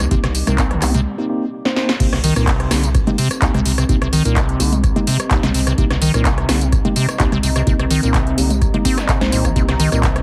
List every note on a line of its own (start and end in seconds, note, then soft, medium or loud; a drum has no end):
0.00 0.06 C2 medium
0.00 1.02 A#3 medium
0.00 1.06 C4 medium
0.00 1.02 D#4 medium
0.00 1.02 G4 medium
0.00 1.06 G4 medium
0.00 1.04 D#5 medium
0.00 1.06 D#5 medium
0.00 1.08 D6 medium
0.00 tambourine soft
0.11 0.42 C2 loud
0.11 0.15 C3 loud
0.11 0.21 A#3 medium
0.11 0.21 C4 medium
0.11 0.21 D#4 medium
0.11 0.21 G4 medium
0.11 kick loud
0.11 closed hi-hat medium
0.11 tambourine soft
0.24 0.27 C3 loud
0.24 cross-stick medium
0.24 snare soft
0.24 closed hi-hat soft
0.35 open hi-hat loud
0.35 tambourine medium
0.47 0.78 C2 loud
0.47 0.56 C3 medium
0.47 0.61 A#3 medium
0.47 0.61 C4 medium
0.47 0.61 D#4 medium
0.47 0.61 A#4 loud
0.47 cross-stick medium
0.47 closed hi-hat medium
0.47 tambourine soft
0.47 low conga medium
0.58 0.72 C4 medium
0.58 kick loud
0.58 cross-stick soft
0.58 clap loud
0.58 closed hi-hat medium
0.58 tambourine soft
0.71 0.84 D3 medium
0.71 cross-stick medium
0.71 closed hi-hat soft
0.82 1.06 C2 loud
0.82 0.92 A#3 medium
0.82 0.92 C4 medium
0.82 0.92 D#4 medium
0.82 0.92 G4 loud
0.82 cross-stick medium
0.82 clap medium
0.82 open hi-hat loud
0.82 tambourine medium
0.94 1.01 C3 loud
0.94 closed hi-hat medium
0.94 tambourine soft
0.94 low conga medium
1.18 1.27 A#3 loud
1.18 1.27 C4 loud
1.18 1.27 D#4 medium
1.18 1.27 G4 loud
1.29 1.44 A#3 medium
1.29 1.44 C4 medium
1.29 1.44 D#4 medium
1.29 1.44 G4 medium
1.65 1.75 A#3 medium
1.65 1.75 C4 medium
1.65 1.75 D#4 medium
1.65 1.75 C5 loud
1.65 snare medium
1.76 1.91 A#3 medium
1.76 1.91 C4 medium
1.76 1.91 D#4 medium
1.76 1.91 C5 medium
1.76 snare medium
1.89 snare medium
2.00 2.31 C2 loud
2.00 2.07 C3 medium
2.00 2.10 A#3 medium
2.00 2.10 C4 medium
2.00 10.22 C4 medium
2.00 2.10 D#4 medium
2.00 2.10 G4 medium
2.00 kick loud
2.00 closed hi-hat medium
2.00 crash loud
2.00 tambourine soft
2.13 2.19 C3 medium
2.13 cross-stick medium
2.13 snare soft
2.13 closed hi-hat soft
2.24 2.34 D#3 loud
2.24 open hi-hat loud
2.24 tambourine medium
2.35 2.67 C2 loud
2.35 2.49 A#2 medium
2.35 2.50 A#3 medium
2.35 2.50 C4 medium
2.35 2.50 D#4 medium
2.35 10.22 G4 medium
2.35 2.50 A#4 medium
2.35 cross-stick medium
2.35 closed hi-hat medium
2.35 tambourine soft
2.47 2.72 C3 loud
2.47 kick loud
2.47 cross-stick soft
2.47 clap loud
2.47 closed hi-hat medium
2.47 tambourine soft
2.60 cross-stick medium
2.60 closed hi-hat soft
2.71 3.02 C2 loud
2.71 2.85 D3 medium
2.71 2.80 A#3 medium
2.71 2.80 C4 medium
2.71 2.80 D#4 medium
2.71 2.80 G4 medium
2.71 cross-stick medium
2.71 snare medium
2.71 open hi-hat loud
2.71 tambourine medium
2.79 10.22 A#5 medium
2.83 2.90 C3 medium
2.83 closed hi-hat medium
2.83 tambourine soft
2.95 10.22 D#5 medium
2.95 kick loud
2.95 cross-stick soft
2.95 closed hi-hat medium
2.95 tambourine soft
3.07 3.15 G1 loud
3.07 3.11 C3 medium
3.07 3.16 A#3 loud
3.07 3.16 C4 medium
3.07 3.16 D#4 medium
3.07 3.16 G4 loud
3.07 closed hi-hat soft
3.07 low conga loud
3.18 3.29 C3 loud
3.18 open hi-hat loud
3.18 tambourine medium
3.31 cross-stick medium
3.31 closed hi-hat medium
3.31 tambourine soft
3.42 3.49 C2 loud
3.42 3.51 A#3 medium
3.42 3.51 C4 medium
3.42 3.51 D#4 medium
3.42 3.51 G4 medium
3.42 kick loud
3.42 clap loud
3.42 closed hi-hat medium
3.42 tambourine soft
3.54 3.85 C2 medium
3.54 3.60 C3 loud
3.54 cross-stick soft
3.54 closed hi-hat soft
3.54 low conga loud
3.65 3.72 C3 medium
3.65 open hi-hat loud
3.65 tambourine medium
3.78 3.84 C3 medium
3.78 cross-stick medium
3.78 closed hi-hat medium
3.78 tambourine soft
3.89 4.20 C2 medium
3.89 3.96 C3 medium
3.89 3.99 A#3 medium
3.89 3.99 C4 medium
3.89 3.99 D#4 medium
3.89 3.99 G4 medium
3.89 kick loud
3.89 closed hi-hat medium
3.89 tambourine soft
4.02 4.08 C3 medium
4.02 cross-stick medium
4.02 closed hi-hat soft
4.13 4.23 D#3 loud
4.13 open hi-hat loud
4.13 tambourine medium
4.25 4.55 C2 loud
4.25 4.38 A#2 medium
4.25 4.39 A#3 medium
4.25 4.39 C4 medium
4.25 4.39 D#4 medium
4.25 4.39 A#4 loud
4.25 closed hi-hat medium
4.25 tambourine soft
4.36 4.61 C3 loud
4.36 kick loud
4.36 cross-stick soft
4.36 clap loud
4.36 closed hi-hat medium
4.36 tambourine soft
4.49 closed hi-hat soft
4.60 4.91 C2 loud
4.60 4.74 D3 medium
4.60 4.69 A#3 medium
4.60 4.69 C4 medium
4.60 4.69 D#4 medium
4.60 4.69 G4 loud
4.60 open hi-hat loud
4.60 tambourine medium
4.72 4.79 C3 medium
4.72 closed hi-hat medium
4.72 tambourine soft
4.72 low conga medium
4.83 kick loud
4.83 cross-stick soft
4.83 closed hi-hat medium
4.83 tambourine soft
4.96 5.04 G1 loud
4.96 5.00 C3 medium
4.96 5.04 A#3 loud
4.96 5.04 C4 loud
4.96 5.04 D#4 medium
4.96 5.04 G4 loud
4.96 closed hi-hat soft
4.96 low conga medium
5.07 5.17 C3 loud
5.07 open hi-hat loud
5.07 tambourine medium
5.20 cross-stick medium
5.20 closed hi-hat medium
5.20 tambourine soft
5.31 5.38 C2 loud
5.31 5.40 A#3 medium
5.31 5.40 C4 medium
5.31 5.40 D#4 medium
5.31 5.40 G4 medium
5.31 kick loud
5.31 clap loud
5.31 closed hi-hat medium
5.31 tambourine soft
5.43 5.74 C2 medium
5.43 5.49 C3 loud
5.43 cross-stick soft
5.43 snare medium
5.43 closed hi-hat soft
5.43 low conga medium
5.54 5.61 C3 medium
5.54 open hi-hat loud
5.54 tambourine medium
5.67 5.73 C3 medium
5.67 cross-stick medium
5.67 closed hi-hat medium
5.67 tambourine soft
5.78 6.09 C2 loud
5.78 5.85 C3 medium
5.78 5.88 A#3 medium
5.78 5.88 C4 medium
5.78 5.88 D#4 medium
5.78 5.88 G4 medium
5.78 kick loud
5.78 closed hi-hat soft
5.78 tambourine soft
5.90 5.97 C3 medium
5.90 cross-stick medium
5.90 snare soft
5.90 closed hi-hat soft
6.02 6.12 D#3 loud
6.02 open hi-hat loud
6.02 tambourine medium
6.14 6.45 C2 loud
6.14 6.27 A#2 medium
6.14 6.28 A#3 medium
6.14 6.28 C4 medium
6.14 6.28 D#4 medium
6.14 6.28 A#4 loud
6.14 cross-stick medium
6.14 closed hi-hat medium
6.14 tambourine soft
6.25 6.50 C3 loud
6.25 kick loud
6.25 cross-stick soft
6.25 clap loud
6.25 closed hi-hat medium
6.25 tambourine soft
6.38 cross-stick medium
6.38 closed hi-hat soft
6.49 6.80 C2 loud
6.49 6.63 D3 medium
6.49 6.58 A#3 medium
6.49 6.58 C4 medium
6.49 6.58 D#4 medium
6.49 6.58 G4 medium
6.49 cross-stick medium
6.49 snare medium
6.49 open hi-hat loud
6.49 tambourine medium
6.61 6.67 C3 medium
6.61 closed hi-hat medium
6.61 tambourine soft
6.72 kick loud
6.72 cross-stick soft
6.72 closed hi-hat medium
6.72 tambourine soft
6.85 6.93 G1 medium
6.85 6.89 C3 medium
6.85 6.93 A#3 loud
6.85 6.93 C4 medium
6.85 6.93 D#4 medium
6.85 6.93 G4 loud
6.85 closed hi-hat soft
6.85 low conga medium
6.96 7.06 C3 loud
6.96 open hi-hat loud
6.96 tambourine medium
7.09 cross-stick medium
7.09 closed hi-hat medium
7.09 tambourine soft
7.20 7.27 C2 loud
7.20 7.29 A#3 medium
7.20 7.29 C4 medium
7.20 7.29 D#4 medium
7.20 7.29 G4 medium
7.20 kick loud
7.20 clap loud
7.20 closed hi-hat medium
7.20 tambourine soft
7.32 7.63 C2 medium
7.32 7.38 C3 loud
7.32 cross-stick soft
7.32 closed hi-hat soft
7.32 low conga medium
7.43 7.50 C3 medium
7.43 open hi-hat loud
7.43 tambourine medium
7.56 7.62 C3 medium
7.56 cross-stick medium
7.56 closed hi-hat medium
7.56 tambourine soft
7.67 7.98 C2 loud
7.67 7.74 C3 medium
7.67 7.77 A#3 medium
7.67 7.77 C4 medium
7.67 7.77 D#4 medium
7.67 7.77 G4 medium
7.67 kick loud
7.67 closed hi-hat medium
7.67 tambourine soft
7.79 7.86 C3 medium
7.79 cross-stick medium
7.79 closed hi-hat soft
7.91 8.01 D#3 loud
7.91 open hi-hat loud
7.91 tambourine medium
8.03 8.33 C2 loud
8.03 8.16 A#2 medium
8.03 8.17 A#3 medium
8.03 8.17 C4 medium
8.03 8.17 D#4 medium
8.03 8.17 A#4 loud
8.03 closed hi-hat soft
8.03 tambourine soft
8.14 8.39 C3 loud
8.14 kick loud
8.14 cross-stick soft
8.14 clap loud
8.14 closed hi-hat medium
8.14 tambourine soft
8.27 closed hi-hat soft
8.38 8.69 C2 loud
8.38 8.52 D3 medium
8.38 8.47 A#3 medium
8.38 8.47 C4 medium
8.38 8.47 D#4 medium
8.38 8.47 G4 medium
8.38 open hi-hat loud
8.38 tambourine medium
8.50 8.56 C3 medium
8.50 closed hi-hat medium
8.50 tambourine soft
8.50 low conga medium
8.61 kick loud
8.61 cross-stick soft
8.61 closed hi-hat soft
8.61 tambourine soft
8.74 8.82 G1 loud
8.74 8.78 C3 medium
8.74 8.82 A#3 loud
8.74 8.82 C4 medium
8.74 8.82 D#4 medium
8.74 8.82 G4 loud
8.74 closed hi-hat soft
8.74 low conga medium
8.85 9.00 A#3 medium
8.85 8.99 C4 loud
8.85 9.00 C4 medium
8.85 9.00 D#4 medium
8.85 9.00 G4 medium
8.85 kick medium
8.85 open hi-hat loud
8.85 tambourine medium
8.98 9.10 G3 medium
8.98 cross-stick medium
8.98 snare soft
8.98 closed hi-hat soft
8.98 tambourine soft
9.09 9.19 C3 loud
9.09 kick loud
9.09 clap loud
9.09 closed hi-hat medium
9.09 tambourine soft
9.21 9.52 C2 medium
9.21 9.31 A#3 medium
9.21 9.31 C4 medium
9.21 9.31 D#4 medium
9.21 9.31 C5 loud
9.21 cross-stick soft
9.21 snare medium
9.21 closed hi-hat soft
9.21 low conga medium
9.32 9.46 A#2 medium
9.32 9.47 A#3 medium
9.32 9.47 C4 medium
9.32 9.47 D#4 medium
9.32 9.47 C5 medium
9.32 open hi-hat loud
9.32 tambourine medium
9.45 9.54 F3 medium
9.45 kick medium
9.45 cross-stick medium
9.45 closed hi-hat soft
9.45 tambourine soft
9.56 9.87 C2 loud
9.56 9.63 C3 medium
9.56 9.66 A#3 medium
9.56 9.66 C4 medium
9.56 9.66 D#4 medium
9.56 9.66 G4 medium
9.56 kick loud
9.56 closed hi-hat medium
9.56 tambourine soft
9.69 9.75 C3 medium
9.69 cross-stick medium
9.69 snare soft
9.69 closed hi-hat soft
9.80 9.90 D#3 loud
9.80 open hi-hat loud
9.80 tambourine medium
9.92 10.22 C2 loud
9.92 10.05 A#2 medium
9.92 10.06 A#3 medium
9.92 10.06 C4 medium
9.92 10.06 D#4 medium
9.92 10.06 A#4 medium
9.92 cross-stick medium
9.92 closed hi-hat soft
9.92 tambourine soft
10.03 10.22 C3 loud
10.03 kick loud
10.03 cross-stick soft
10.03 clap loud
10.03 closed hi-hat medium
10.03 tambourine soft
10.16 cross-stick medium
10.16 closed hi-hat soft